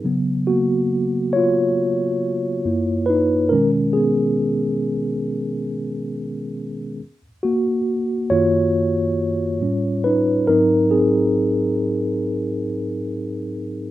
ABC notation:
X:1
M:4/4
L:1/8
Q:"Swing 16ths" 1/4=69
K:F#
V:1 name="Tine electric piano"
z [A,F]2 [Ec]4 [DB] | [CA] [B,G]4 z3 | z [A,F]2 [Ec]4 [DB] | [DA] [^B,G]4 z3 |]
V:2 name="Tine electric piano" clef=bass
[C,F,B,]3 z3 [F,,A,=E] z | [B,,D,G,]8 | z3 [F,,D,A,]3 [=A,,=G,C]2 | [G,,F,^B,]8 |]